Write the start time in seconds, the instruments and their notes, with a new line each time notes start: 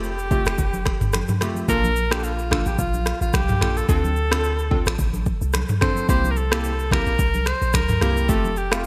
Already playing: 808-style bass F1, synth keys A3 C4 F4 G4, alto saxophone G4
0.04 shaker
0.19 shaker
0.31 synth keys A3 C4 F4 G4, kick, low conga, shaker
0.46 808-style bass F1, finger snap, cross-stick, shaker
0.58 808-style bass F1, kick, low conga, shaker
0.73 high conga, shaker
0.85 finger snap, kick, cross-stick, shaker
1.01 808-style bass G1, mid tom, shaker
1.13 finger snap, cross-stick, high conga, shaker
1.28 mid tom, high conga, shaker
1.41 synth keys A3 C4 F4 G4, finger snap, cross-stick, low conga, shaker
1.55 high conga, shaker
1.68 808-style bass A#1, synth keys A#3 D4 F4 A4, alto saxophone A#4, kick, shaker
1.84 high conga, shaker
1.96 shaker
2.11 synth keys A#3 D4 F4 A4, alto saxophone G4, finger snap, cross-stick, shaker
2.24 alto saxophone F4, shaker
2.39 shaker
2.51 synth keys A#3 D4 F4 A4, finger snap, kick, cross-stick, high conga, low conga
2.66 808-style bass A1, alto saxophone G4, shaker
2.79 808-style bass A#1, alto saxophone F4, kick, low conga, shaker
2.94 high conga, shaker
3.06 finger snap, cross-stick, shaker
3.21 808-style bass A1, alto saxophone F4, shaker
3.33 808-style bass C2, alto saxophone G4, finger snap, kick, cross-stick, high conga, shaker
3.49 mid tom, high conga, shaker
3.61 808-style bass A#1, synth keys A#3 D4 F4 A4, finger snap, cross-stick, low conga, shaker
3.75 alto saxophone A4, high conga, shaker
3.88 808-style bass D2, synth keys C4 D4 F4 A4, alto saxophone A4, kick, shaker
4.04 high conga, shaker
4.16 shaker
4.31 synth keys C4 D4 F4 A4, finger snap, cross-stick, shaker
4.44 shaker
4.59 shaker
4.71 synth keys C4 D4 F4 A4, kick, low conga
4.86 808-style bass A1, finger snap, cross-stick, shaker
4.99 808-style bass A1, kick, low conga, shaker
5.13 high conga, shaker
5.26 kick, shaker
5.41 808-style bass C2, shaker
5.53 finger snap, cross-stick, high conga, shaker
5.69 mid tom, high conga, shaker
5.81 synth keys C4 D4 F4 A4, alto saxophone C5, finger snap, kick, cross-stick, low conga, shaker
5.95 high conga, shaker
6.09 808-style bass C2, synth keys A#3 C4 E4 G4, alto saxophone C5, kick, shaker
6.24 high conga, shaker
6.31 alto saxophone A#4
6.36 alto saxophone A4, shaker
6.51 synth keys A#3 C4 E4 G4, finger snap, cross-stick, shaker
6.64 shaker
6.79 shaker
6.91 synth keys A#3 C4 E4 G4, alto saxophone A#4, finger snap, kick, cross-stick, high conga, low conga
7.06 808-style bass A#1, shaker
7.19 808-style bass C2, kick, low conga, shaker
7.34 high conga, shaker
7.46 alto saxophone C5, finger snap, cross-stick, shaker
7.62 808-style bass A#1, shaker
7.73 808-style bass D2, alto saxophone A#4, finger snap, kick, cross-stick, high conga, shaker
7.89 mid tom, high conga, shaker
8.01 808-style bass C2, synth keys A#3 C4 E4 G4, alto saxophone A#4, finger snap, cross-stick, low conga, shaker
8.15 high conga, shaker
8.29 808-style bass F1, synth keys A3 C4 F4 G4, alto saxophone A4, kick, shaker
8.44 high conga, shaker
8.57 alto saxophone G4, shaker
8.72 synth keys A3 C4 F4 G4, alto saxophone F4, finger snap, cross-stick, shaker